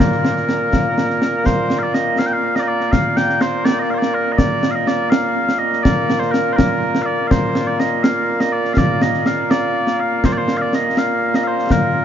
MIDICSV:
0, 0, Header, 1, 3, 480
1, 0, Start_track
1, 0, Key_signature, -2, "major"
1, 0, Tempo, 487805
1, 2, Time_signature, 6, 3, 24, 8
1, 11856, End_track
2, 0, Start_track
2, 0, Title_t, "Bagpipes"
2, 0, Program_c, 0, 109
2, 0, Note_on_c, 0, 46, 89
2, 0, Note_on_c, 0, 58, 89
2, 0, Note_on_c, 0, 70, 80
2, 1436, Note_off_c, 0, 70, 0
2, 1436, Note_on_c, 0, 72, 96
2, 1759, Note_off_c, 0, 72, 0
2, 1759, Note_on_c, 0, 77, 84
2, 1796, Note_off_c, 0, 77, 0
2, 1796, Note_on_c, 0, 74, 84
2, 1908, Note_off_c, 0, 74, 0
2, 1908, Note_on_c, 0, 75, 102
2, 2150, Note_off_c, 0, 75, 0
2, 2150, Note_on_c, 0, 77, 101
2, 2228, Note_off_c, 0, 77, 0
2, 2228, Note_on_c, 0, 79, 90
2, 2292, Note_off_c, 0, 79, 0
2, 2292, Note_on_c, 0, 77, 109
2, 2514, Note_off_c, 0, 77, 0
2, 2514, Note_on_c, 0, 75, 87
2, 2551, Note_off_c, 0, 75, 0
2, 2551, Note_on_c, 0, 74, 78
2, 2574, Note_off_c, 0, 74, 0
2, 2574, Note_on_c, 0, 75, 90
2, 2632, Note_off_c, 0, 75, 0
2, 2632, Note_on_c, 0, 74, 101
2, 2871, Note_off_c, 0, 74, 0
2, 2871, Note_on_c, 0, 77, 113
2, 3117, Note_off_c, 0, 77, 0
2, 3117, Note_on_c, 0, 79, 108
2, 3358, Note_off_c, 0, 79, 0
2, 3358, Note_on_c, 0, 72, 96
2, 3590, Note_off_c, 0, 72, 0
2, 3590, Note_on_c, 0, 74, 104
2, 3727, Note_off_c, 0, 74, 0
2, 3727, Note_on_c, 0, 75, 70
2, 3748, Note_off_c, 0, 75, 0
2, 3748, Note_on_c, 0, 74, 101
2, 3840, Note_off_c, 0, 74, 0
2, 3840, Note_on_c, 0, 77, 64
2, 3876, Note_off_c, 0, 77, 0
2, 3876, Note_on_c, 0, 72, 64
2, 3914, Note_off_c, 0, 72, 0
2, 3914, Note_on_c, 0, 74, 96
2, 4077, Note_off_c, 0, 74, 0
2, 4077, Note_on_c, 0, 70, 95
2, 4252, Note_off_c, 0, 70, 0
2, 4252, Note_on_c, 0, 75, 81
2, 4306, Note_off_c, 0, 75, 0
2, 4306, Note_on_c, 0, 74, 101
2, 4634, Note_off_c, 0, 74, 0
2, 4634, Note_on_c, 0, 77, 82
2, 4676, Note_off_c, 0, 77, 0
2, 4676, Note_on_c, 0, 75, 82
2, 4792, Note_off_c, 0, 75, 0
2, 4792, Note_on_c, 0, 74, 97
2, 5016, Note_off_c, 0, 74, 0
2, 5016, Note_on_c, 0, 77, 101
2, 5495, Note_off_c, 0, 77, 0
2, 5495, Note_on_c, 0, 75, 100
2, 5735, Note_off_c, 0, 75, 0
2, 5735, Note_on_c, 0, 74, 100
2, 6096, Note_off_c, 0, 74, 0
2, 6096, Note_on_c, 0, 72, 77
2, 6213, Note_off_c, 0, 72, 0
2, 6213, Note_on_c, 0, 70, 90
2, 6424, Note_off_c, 0, 70, 0
2, 6424, Note_on_c, 0, 72, 90
2, 6458, Note_off_c, 0, 72, 0
2, 6458, Note_on_c, 0, 70, 90
2, 6909, Note_off_c, 0, 70, 0
2, 6909, Note_on_c, 0, 77, 94
2, 6942, Note_off_c, 0, 77, 0
2, 6942, Note_on_c, 0, 74, 94
2, 7156, Note_off_c, 0, 74, 0
2, 7156, Note_on_c, 0, 77, 92
2, 7191, Note_off_c, 0, 77, 0
2, 7191, Note_on_c, 0, 72, 92
2, 7547, Note_off_c, 0, 72, 0
2, 7547, Note_on_c, 0, 74, 77
2, 7669, Note_off_c, 0, 74, 0
2, 7669, Note_on_c, 0, 75, 94
2, 7903, Note_off_c, 0, 75, 0
2, 7903, Note_on_c, 0, 77, 96
2, 8267, Note_off_c, 0, 77, 0
2, 8267, Note_on_c, 0, 75, 94
2, 8385, Note_off_c, 0, 75, 0
2, 8385, Note_on_c, 0, 74, 88
2, 8594, Note_off_c, 0, 74, 0
2, 8594, Note_on_c, 0, 77, 99
2, 8636, Note_off_c, 0, 77, 0
2, 8636, Note_on_c, 0, 74, 99
2, 8872, Note_off_c, 0, 74, 0
2, 8872, Note_on_c, 0, 75, 91
2, 9117, Note_off_c, 0, 75, 0
2, 9117, Note_on_c, 0, 77, 94
2, 9353, Note_off_c, 0, 77, 0
2, 9353, Note_on_c, 0, 74, 97
2, 9839, Note_off_c, 0, 74, 0
2, 9839, Note_on_c, 0, 77, 95
2, 10085, Note_off_c, 0, 77, 0
2, 10085, Note_on_c, 0, 72, 93
2, 10160, Note_off_c, 0, 72, 0
2, 10160, Note_on_c, 0, 74, 82
2, 10210, Note_off_c, 0, 74, 0
2, 10210, Note_on_c, 0, 72, 101
2, 10403, Note_off_c, 0, 72, 0
2, 10403, Note_on_c, 0, 77, 82
2, 10445, Note_off_c, 0, 77, 0
2, 10445, Note_on_c, 0, 74, 82
2, 10572, Note_off_c, 0, 74, 0
2, 10572, Note_on_c, 0, 75, 95
2, 10805, Note_off_c, 0, 75, 0
2, 10805, Note_on_c, 0, 77, 99
2, 11171, Note_off_c, 0, 77, 0
2, 11171, Note_on_c, 0, 75, 84
2, 11254, Note_off_c, 0, 75, 0
2, 11254, Note_on_c, 0, 77, 82
2, 11288, Note_off_c, 0, 77, 0
2, 11288, Note_on_c, 0, 72, 82
2, 11529, Note_off_c, 0, 72, 0
2, 11529, Note_on_c, 0, 70, 79
2, 11856, Note_off_c, 0, 46, 0
2, 11856, Note_off_c, 0, 58, 0
2, 11856, Note_off_c, 0, 70, 0
2, 11856, End_track
3, 0, Start_track
3, 0, Title_t, "Drums"
3, 0, Note_on_c, 9, 35, 61
3, 0, Note_on_c, 9, 38, 95
3, 98, Note_off_c, 9, 35, 0
3, 98, Note_off_c, 9, 38, 0
3, 120, Note_on_c, 9, 38, 32
3, 219, Note_off_c, 9, 38, 0
3, 242, Note_on_c, 9, 38, 76
3, 340, Note_off_c, 9, 38, 0
3, 360, Note_on_c, 9, 38, 27
3, 458, Note_off_c, 9, 38, 0
3, 479, Note_on_c, 9, 38, 68
3, 578, Note_off_c, 9, 38, 0
3, 720, Note_on_c, 9, 35, 49
3, 720, Note_on_c, 9, 38, 85
3, 818, Note_off_c, 9, 35, 0
3, 818, Note_off_c, 9, 38, 0
3, 963, Note_on_c, 9, 38, 72
3, 1061, Note_off_c, 9, 38, 0
3, 1085, Note_on_c, 9, 38, 23
3, 1184, Note_off_c, 9, 38, 0
3, 1198, Note_on_c, 9, 38, 70
3, 1296, Note_off_c, 9, 38, 0
3, 1439, Note_on_c, 9, 35, 52
3, 1439, Note_on_c, 9, 38, 78
3, 1538, Note_off_c, 9, 35, 0
3, 1538, Note_off_c, 9, 38, 0
3, 1674, Note_on_c, 9, 38, 70
3, 1772, Note_off_c, 9, 38, 0
3, 1913, Note_on_c, 9, 38, 71
3, 2012, Note_off_c, 9, 38, 0
3, 2158, Note_on_c, 9, 38, 79
3, 2256, Note_off_c, 9, 38, 0
3, 2518, Note_on_c, 9, 38, 64
3, 2616, Note_off_c, 9, 38, 0
3, 2761, Note_on_c, 9, 38, 26
3, 2859, Note_off_c, 9, 38, 0
3, 2881, Note_on_c, 9, 35, 53
3, 2881, Note_on_c, 9, 38, 80
3, 2979, Note_off_c, 9, 35, 0
3, 2979, Note_off_c, 9, 38, 0
3, 3120, Note_on_c, 9, 38, 76
3, 3218, Note_off_c, 9, 38, 0
3, 3242, Note_on_c, 9, 38, 28
3, 3340, Note_off_c, 9, 38, 0
3, 3354, Note_on_c, 9, 38, 76
3, 3453, Note_off_c, 9, 38, 0
3, 3596, Note_on_c, 9, 38, 88
3, 3694, Note_off_c, 9, 38, 0
3, 3958, Note_on_c, 9, 38, 67
3, 4056, Note_off_c, 9, 38, 0
3, 4314, Note_on_c, 9, 35, 54
3, 4314, Note_on_c, 9, 38, 87
3, 4412, Note_off_c, 9, 35, 0
3, 4412, Note_off_c, 9, 38, 0
3, 4556, Note_on_c, 9, 38, 79
3, 4654, Note_off_c, 9, 38, 0
3, 4796, Note_on_c, 9, 38, 77
3, 4895, Note_off_c, 9, 38, 0
3, 5038, Note_on_c, 9, 38, 101
3, 5136, Note_off_c, 9, 38, 0
3, 5398, Note_on_c, 9, 38, 66
3, 5497, Note_off_c, 9, 38, 0
3, 5640, Note_on_c, 9, 38, 27
3, 5738, Note_off_c, 9, 38, 0
3, 5758, Note_on_c, 9, 35, 58
3, 5758, Note_on_c, 9, 38, 97
3, 5857, Note_off_c, 9, 35, 0
3, 5857, Note_off_c, 9, 38, 0
3, 5999, Note_on_c, 9, 38, 78
3, 6098, Note_off_c, 9, 38, 0
3, 6123, Note_on_c, 9, 38, 31
3, 6221, Note_off_c, 9, 38, 0
3, 6240, Note_on_c, 9, 38, 80
3, 6338, Note_off_c, 9, 38, 0
3, 6479, Note_on_c, 9, 35, 56
3, 6479, Note_on_c, 9, 38, 101
3, 6578, Note_off_c, 9, 35, 0
3, 6578, Note_off_c, 9, 38, 0
3, 6836, Note_on_c, 9, 38, 68
3, 6934, Note_off_c, 9, 38, 0
3, 7195, Note_on_c, 9, 35, 59
3, 7195, Note_on_c, 9, 38, 94
3, 7293, Note_off_c, 9, 35, 0
3, 7293, Note_off_c, 9, 38, 0
3, 7431, Note_on_c, 9, 38, 80
3, 7530, Note_off_c, 9, 38, 0
3, 7673, Note_on_c, 9, 38, 77
3, 7772, Note_off_c, 9, 38, 0
3, 7911, Note_on_c, 9, 38, 96
3, 8010, Note_off_c, 9, 38, 0
3, 8270, Note_on_c, 9, 38, 75
3, 8368, Note_off_c, 9, 38, 0
3, 8510, Note_on_c, 9, 38, 29
3, 8608, Note_off_c, 9, 38, 0
3, 8628, Note_on_c, 9, 35, 64
3, 8628, Note_on_c, 9, 38, 90
3, 8726, Note_off_c, 9, 35, 0
3, 8726, Note_off_c, 9, 38, 0
3, 8871, Note_on_c, 9, 38, 84
3, 8969, Note_off_c, 9, 38, 0
3, 8991, Note_on_c, 9, 38, 30
3, 9090, Note_off_c, 9, 38, 0
3, 9110, Note_on_c, 9, 38, 75
3, 9209, Note_off_c, 9, 38, 0
3, 9357, Note_on_c, 9, 38, 89
3, 9455, Note_off_c, 9, 38, 0
3, 9713, Note_on_c, 9, 38, 59
3, 9811, Note_off_c, 9, 38, 0
3, 10074, Note_on_c, 9, 35, 49
3, 10074, Note_on_c, 9, 38, 82
3, 10172, Note_off_c, 9, 35, 0
3, 10172, Note_off_c, 9, 38, 0
3, 10312, Note_on_c, 9, 38, 66
3, 10410, Note_off_c, 9, 38, 0
3, 10559, Note_on_c, 9, 38, 70
3, 10658, Note_off_c, 9, 38, 0
3, 10797, Note_on_c, 9, 38, 80
3, 10895, Note_off_c, 9, 38, 0
3, 11161, Note_on_c, 9, 38, 69
3, 11260, Note_off_c, 9, 38, 0
3, 11404, Note_on_c, 9, 38, 28
3, 11503, Note_off_c, 9, 38, 0
3, 11518, Note_on_c, 9, 35, 58
3, 11518, Note_on_c, 9, 38, 88
3, 11616, Note_off_c, 9, 35, 0
3, 11616, Note_off_c, 9, 38, 0
3, 11856, End_track
0, 0, End_of_file